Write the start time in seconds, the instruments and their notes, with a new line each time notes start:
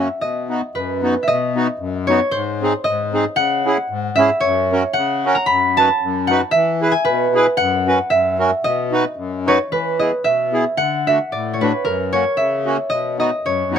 Already playing: harp B4 E5 F#5
0.20 accordion B2, harp D#5
0.49 accordion B3 D#4 F#4
0.75 accordion F#2, harp B4
1.03 accordion B3 D#4 F#4
1.23 harp E5
1.28 accordion B2, harp D#5
1.55 accordion B3 D#4 F#4
1.79 accordion F#2
2.07 accordion B3 D#4 F#4, harp C#5
2.31 accordion G#2, harp C5
2.62 accordion C4 D#4 G#4
2.84 accordion G#2, harp D#5
3.13 accordion C4 D#4 G#4
3.36 accordion C#3, harp F#5
3.65 accordion C#4 E4 G#4
3.90 accordion G#2
4.16 accordion C#4 E4, harp E5
4.20 accordion G#4
4.40 accordion F#2, harp C#5
4.72 accordion C#4 F#4 A#4
4.93 accordion C#3, harp F#5
5.26 accordion C#4 F#4 A#4
5.35 harp A#5
5.46 accordion F#2, harp B5
5.77 accordion D#4 F#4 B4, harp A5
6.03 accordion F#2
6.27 accordion D#4 F#4 B4, harp F#5
6.51 accordion E3, harp E5
6.82 accordion E4 G#4 B4
6.92 harp G#5
7.05 accordion B2, harp B4
7.35 accordion E4 G#4 B4
7.57 accordion F#2, harp F#5
7.87 accordion C#4 F#4 B4
8.10 accordion F#2, harp E5
8.39 accordion C#4 F#4 A#4
8.64 accordion B2, harp D#5
8.92 accordion D#4 F#4 B4
9.16 accordion F#2
9.47 accordion D#4 F#4 B4, harp C#5
9.71 accordion E3, harp B4
9.99 accordion B3 E4 G#4, harp D#5
10.24 accordion B2, harp E5
10.52 accordion B3 E4 G#4
10.77 accordion D3, harp F#5
11.07 accordion A3 D4 F#4, harp E5
11.32 accordion A2, harp D5
11.53 harp C#5
11.61 accordion A3 D4 F#4, harp B4
11.84 accordion F#2, harp A#4
12.13 accordion A#3 C#4 F#4, harp C#5
12.37 accordion C#3, harp E5
12.65 accordion A#3 C#4 F#4
12.90 accordion B2, harp D#5
13.18 accordion B3 D#4 F#4, harp D#5
13.45 accordion F#2, harp C#5
13.71 accordion B3 D#4 F#4
13.76 harp C#5